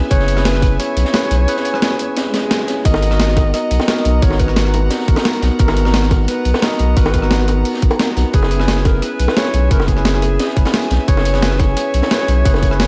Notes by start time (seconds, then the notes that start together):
Already playing: B3 C#4 E4 G#4 B4 E5 G#5
0.11 F#1 C#4 E4 G#4 B4 C#5, kick, closed hi-hat
0.20 snare
0.28 closed hi-hat
0.36 C#4 E4 G#4 B4, cross-stick, snare
0.45 B4, snare, closed hi-hat
0.54 cross-stick, snare
0.62 kick, snare, closed hi-hat
0.79 C#5, cross-stick, closed hi-hat
0.97 B1, closed hi-hat
1.05 snare
1.13 C#4 E4 G#4 B4, snare, closed hi-hat
1.23 snare
1.31 B1, closed hi-hat
1.48 C#4 E4 G#4 B4, closed hi-hat
1.56 snare
1.65 closed hi-hat
1.73 C#4 E4 G#4 B4, cross-stick
1.82 snare, closed hi-hat
1.91 cross-stick, snare
1.99 closed hi-hat
2.17 snare, closed hi-hat, swell
2.26 snare
2.34 snare, closed hi-hat
2.42 closed hi-hat
2.51 snare, closed hi-hat
2.68 C#4 E4 G#4 C#5, snare, closed hi-hat
2.85 G#1 B3 D#4 F#4 A#4 D#5 F#5 A#5, kick, closed hi-hat
2.94 snare, high bongo
3.02 closed hi-hat
3.10 B3 D#4 F#4 A#4, cross-stick, snare
3.20 snare, closed hi-hat
3.28 cross-stick, snare
3.36 kick, snare, closed hi-hat, high bongo
3.54 D#5, cross-stick, closed hi-hat
3.71 B1, closed hi-hat
3.80 snare, high bongo
3.88 B3 D#4 F#4 A#4, snare, closed hi-hat
3.97 snare
4.05 B1, closed hi-hat
4.22 G#1 B3 D#4 F#4 A#4 C#5, kick, closed hi-hat
4.30 snare, high bongo
4.39 B4, kick, closed hi-hat
4.47 B3 D#4 F#4 A#5, cross-stick
4.56 snare, closed hi-hat
4.65 cross-stick, snare
4.74 closed hi-hat, high bongo
4.90 snare, closed hi-hat
5.00 snare
5.07 G#1 B3 D#4 F#4 A#4, kick, closed hi-hat
5.16 snare, closed hi-hat, high bongo
5.25 snare, closed hi-hat
5.33 closed hi-hat
5.42 B1, snare, closed hi-hat
5.59 G#1 B3 D#4 F#4 A#4, kick, closed hi-hat
5.68 snare, high bongo
5.77 closed hi-hat
5.84 B3 D#4 F#4 A#5, cross-stick, snare
5.94 snare, closed hi-hat
6.02 cross-stick, snare
6.11 A#4, kick, snare, closed hi-hat, high bongo
6.28 B4, cross-stick, closed hi-hat
6.45 B1, closed hi-hat
6.54 snare, high bongo
6.62 B3 D#4 F#4 A#4 D#5, snare, closed hi-hat
6.72 snare
6.79 B1, closed hi-hat
6.97 G#1 B3 D#4 F#4 A#4 B4, kick, closed hi-hat
7.05 snare, high bongo
7.14 kick, closed hi-hat
7.22 B3 D#4 F#4 A#5, cross-stick
7.31 snare, closed hi-hat
7.39 cross-stick, snare
7.48 closed hi-hat, high bongo
7.65 closed hi-hat, open hi-hat
7.74 snare
7.82 G#1, kick, closed hi-hat
7.91 closed hi-hat, high bongo
7.99 snare, closed hi-hat
8.16 B1 B3 D#4 F#4 B4, snare, closed hi-hat
8.33 F#1 C#4 E4 G#4 B4 E5 G#5, kick, closed hi-hat
8.42 snare, high bongo
8.51 closed hi-hat
8.59 C#4 E4 G#4 B4, cross-stick, snare
8.68 snare, closed hi-hat
8.76 cross-stick, snare
8.85 A#4, kick, snare, closed hi-hat, high bongo
9.02 B4, cross-stick, closed hi-hat
9.19 B1, closed hi-hat
9.28 snare, high bongo
9.36 C#4 E4 G#4 B4 C#5, snare, closed hi-hat
9.44 snare
9.54 B1, closed hi-hat
9.71 F#1 C#4 E4 G#4 A#4 B4, kick, closed hi-hat
9.80 snare, high bongo
9.88 G#4, kick, closed hi-hat
9.96 C#4 E4 G#4 B4, cross-stick
10.05 snare, closed hi-hat
10.14 cross-stick, snare
10.22 closed hi-hat, high bongo
10.39 snare, closed hi-hat
10.48 snare
10.56 F#1 C#4 E4 G#4 B4, kick, closed hi-hat
10.65 snare, closed hi-hat, high bongo
10.73 snare, closed hi-hat
10.83 closed hi-hat
10.90 B1, snare, closed hi-hat
11.08 F#1 C#4 E4 G#4 B4 C#5, kick, closed hi-hat
11.17 snare, high bongo
11.25 closed hi-hat
11.33 C#4 E4 G#4 B4, cross-stick, snare
11.42 B4, snare, closed hi-hat
11.51 cross-stick, snare
11.59 C#5, kick, snare, closed hi-hat, high bongo
11.77 cross-stick, closed hi-hat
11.94 B1, closed hi-hat
12.02 snare, high bongo
12.11 C#4 E4 G#4 B4, snare, closed hi-hat
12.20 snare
12.28 B1, closed hi-hat
12.45 F#1 C#4 E4 G#4 B4, kick, closed hi-hat
12.54 snare, high bongo
12.63 kick, closed hi-hat
12.70 C#4 E4 G#4 B4, cross-stick
12.80 snare, closed hi-hat